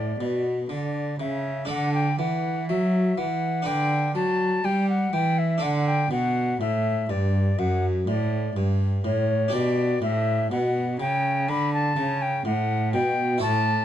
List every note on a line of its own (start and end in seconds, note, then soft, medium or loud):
0.00 0.15 A2 soft
0.00 0.19 A2 soft
0.00 1.63 D4 soft
0.00 1.64 F#4 soft
0.00 1.65 A4 soft
0.00 0.47 D5 medium
0.20 0.69 B2 soft
0.20 0.66 B2 soft
0.69 1.15 D3 soft
0.69 1.19 D3 soft
0.69 1.16 D5 medium
1.20 1.65 C#3 soft
1.20 1.69 C#3 soft
1.20 1.69 E5 medium
1.65 3.61 D4 soft
1.65 3.61 A4 soft
1.65 3.62 D5 soft
1.69 2.16 D3 medium
1.69 2.15 D3 soft
1.69 1.94 F#5 medium
1.94 2.18 G5 medium
2.19 2.64 E3 soft
2.19 2.71 E3 medium
2.19 2.68 F#5 medium
2.69 3.17 F#3 medium
2.69 3.14 F#3 soft
2.69 3.20 E5 medium
3.18 3.63 E3 soft
3.18 3.66 E3 medium
3.18 3.68 F#5 medium
3.62 5.56 D4 soft
3.62 5.57 B4 soft
3.62 5.58 D5 soft
3.67 4.15 D3 medium
3.67 4.12 D3 soft
3.67 4.15 G5 medium
4.15 4.60 F#3 soft
4.15 4.64 F#3 medium
4.15 4.66 A5 medium
4.64 5.09 G3 soft
4.64 5.12 G3 medium
4.64 4.89 G5 medium
4.89 5.15 F#5 medium
5.13 5.61 E3 medium
5.13 5.58 E3 soft
5.13 5.40 G5 medium
5.39 5.64 E5 medium
5.58 9.47 D4 soft
5.58 9.49 A4 soft
5.58 9.49 D5 soft
5.62 6.10 D3 medium
5.62 6.08 D3 soft
5.62 5.89 F#5 medium
5.88 6.11 G5 medium
6.11 6.57 B2 soft
6.11 6.60 B2 medium
6.11 6.60 F#5 medium
6.60 7.09 A2 medium
6.60 7.06 A2 soft
6.60 7.12 E5 medium
7.09 7.55 G2 soft
7.09 7.58 G2 medium
7.09 7.61 D5 medium
7.59 8.04 F#2 soft
7.59 8.07 F#2 medium
7.59 7.86 F#5 medium
8.07 8.52 A2 soft
8.07 8.55 A2 medium
8.07 8.55 D5 medium
8.56 9.04 G2 medium
8.56 9.01 G2 soft
9.04 9.50 A2 medium
9.04 9.53 A2 medium
9.04 9.56 C#5 medium
9.48 13.36 D4 soft
9.48 13.37 G4 soft
9.48 13.38 D5 soft
9.53 9.98 B2 medium
9.53 10.02 B2 medium
9.53 10.02 D5 medium
10.02 10.47 A2 medium
10.02 10.51 A2 medium
10.02 10.51 E5 medium
10.51 10.96 B2 soft
10.51 11.00 B2 medium
10.51 10.99 F#5 medium
11.00 11.45 C#3 medium
11.00 11.51 C#3 medium
11.00 11.51 G5 medium
11.49 11.93 D3 medium
11.49 11.97 D3 medium
11.49 11.73 B5 medium
11.74 12.23 A5 medium
11.96 12.42 C#3 medium
11.96 12.45 C#3 medium
12.22 12.45 G5 medium
12.45 12.90 A2 medium
12.45 12.96 A2 medium
12.45 12.93 F#5 medium
12.93 13.39 B2 medium
12.93 13.43 B2 medium
12.93 13.41 G5 medium
13.38 13.85 E4 soft
13.38 13.85 A4 soft
13.38 13.85 C#5 soft
13.38 13.85 A5 medium
13.43 13.85 A2 medium